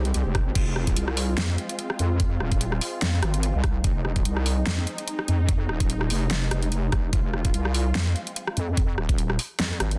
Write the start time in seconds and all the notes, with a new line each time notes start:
Already playing: C2 G#3 C4 G4
0.05 closed hi-hat
0.14 C2, closed hi-hat
0.26 F1
0.35 kick, cross-stick, closed hi-hat
0.46 G#1
0.55 F1 F4, kick, closed hi-hat, crash
0.76 cross-stick
0.87 kick, closed hi-hat
0.96 C2, closed hi-hat
1.08 cross-stick
1.17 open hi-hat
1.38 F2, snare, closed hi-hat
1.58 closed hi-hat
1.69 closed hi-hat
1.79 closed hi-hat
1.90 cross-stick
1.99 F2, closed hi-hat
2.20 kick, closed hi-hat
2.40 D#1, cross-stick
2.52 kick, closed hi-hat
2.61 closed hi-hat
2.72 cross-stick
2.81 open hi-hat
3.02 F2, snare, closed hi-hat
3.23 G#1, cross-stick, closed hi-hat
3.34 closed hi-hat
3.43 closed hi-hat
3.54 C2
3.64 kick, cross-stick, closed hi-hat
3.84 F1 D#4, kick, closed hi-hat
4.05 cross-stick
4.16 kick, closed hi-hat
4.25 C2, closed hi-hat
4.37 cross-stick
4.46 open hi-hat
4.66 F2, snare, closed hi-hat
4.87 closed hi-hat
4.98 closed hi-hat
5.08 closed hi-hat
5.19 cross-stick
5.28 F2, closed hi-hat
5.49 kick, closed hi-hat
5.69 D#1, cross-stick
5.80 kick, closed hi-hat
5.90 closed hi-hat
6.01 cross-stick
6.10 F1, open hi-hat
6.31 snare, closed hi-hat
6.51 F1, cross-stick, closed hi-hat
6.62 closed hi-hat
6.72 closed hi-hat
6.92 F1, kick, cross-stick, closed hi-hat
7.13 F1 F4, kick, closed hi-hat
7.34 cross-stick
7.45 kick, closed hi-hat
7.54 C2, closed hi-hat
7.65 cross-stick
7.75 open hi-hat
7.95 F2, snare, closed hi-hat
8.16 closed hi-hat
8.27 closed hi-hat
8.36 closed hi-hat
8.47 cross-stick
8.57 F2, closed hi-hat
8.77 kick, closed hi-hat
8.98 D#1, cross-stick
9.09 kick, closed hi-hat
9.18 closed hi-hat
9.30 cross-stick
9.39 open hi-hat
9.60 F2, snare, closed hi-hat
9.80 G#1, cross-stick, closed hi-hat
9.91 closed hi-hat